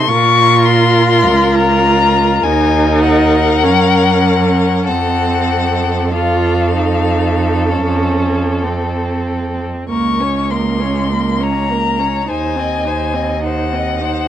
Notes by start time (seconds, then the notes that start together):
Already playing: C6
0.09 A#2 F4 A#4 C#6
0.66 C6
1.27 C#2
1.55 A#5
2.43 D#2 D#4 A#4 G#5
3.02 F#5
3.64 F#2 C#4
4.86 F2 C4 A4 F#5
6.12 F4 A4 F5
6.76 D#4
7.69 C#4
8.64 C4
9.89 C#2 A#3 A#4 C#6
10.20 C#4 C#5
10.50 A#3 A#4 C6
10.80 C#4 C#5
11.10 A#3 A#4
11.40 C#4 C#5 A#5
11.69 A#3 A#4
11.98 C#4 C#5
12.27 D#2 D#4 C5 G#5
12.56 C4 D#5
12.85 D#4 C5
13.14 C4 D#5
13.43 D#4 C5 F#5
13.73 C4 D#5
14.01 D#4 C5